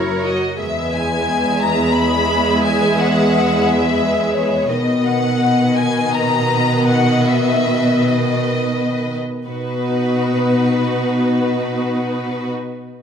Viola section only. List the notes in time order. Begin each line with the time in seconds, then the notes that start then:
Already playing: E4
0.22 F#4
0.57 G#3 G#4
4.72 D#3 B3
9.47 B3 D#4